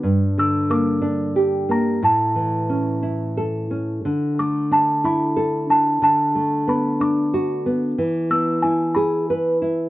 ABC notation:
X:1
M:6/8
L:1/8
Q:3/8=61
K:Amix
V:1 name="Music box"
z e' d'3 _b | a4 z2 | z d' a b2 a | a2 b d'2 z |
z e' ^g b3 |]
V:2 name="Nylon-string guitar"
G,, D, _B, D G B, | A,, E, C E A C | D, A, D E A D | D, A, B, D F B, |
E, B, E ^G B E |]